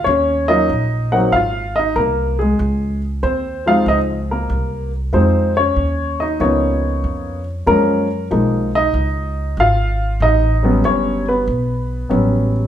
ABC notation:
X:1
M:4/4
L:1/8
Q:"Swing" 1/4=94
K:Db
V:1 name="Grand piano"
[Dd] [Ee]2 [Gg] [Ff] [Ee] [B,B] [A,A]- | [A,A] z [Cc] [Ff] [Ee] [B,B]2 z | [Cc] [Dd]2 [Ee] [Dd]3 z | [K:F#] A2 z [Dd]3 [Ee]2 |
[Dd]2 [Cc] [B,B]4 z |]
V:2 name="Grand piano"
z [G,B,DF] z [G,B,CE] z4 | z3 [F,A,CE]3 z2 | [F,A,CE] z3 [F,B,_CE]3 z | [K:F#] [E,G,A,C] z [E,G,A,D] z4 z |
z [F,=G,B,C]3 z2 [F,G,B,C]2 |]
V:3 name="Upright bass" clef=bass
E,,2 B,,,2 A,,,2 C,,2 | D,,2 E,,2 D,,2 C,,2 | F,,2 E,,2 D,,2 F,,2 | [K:F#] F,,2 B,,,2 C,,2 G,,,2 |
=A,,,2 =G,,,2 B,,,2 A,,,2 |]